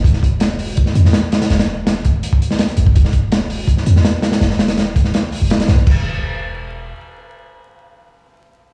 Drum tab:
CC |----------------|----------------|----------------|----------------|
HH |x-x-x-o-x-x-x-xx|xx--x-x-x-x-xxx-|x-x-x-o-x-x-x-xx|x-xxx-x-x-o-xxx-|
SD |-o--o----o-oo-oo|oo--o------oo---|-o--o----o-oo-oo|ooooo--oo---ooo-|
BD |o-o-----o-------|------o--o-----o|o-o-----o-------|------o---------|

CC |x---------------|----------------|
HH |----------------|----------------|
SD |----------------|----------------|
BD |o---------------|----------------|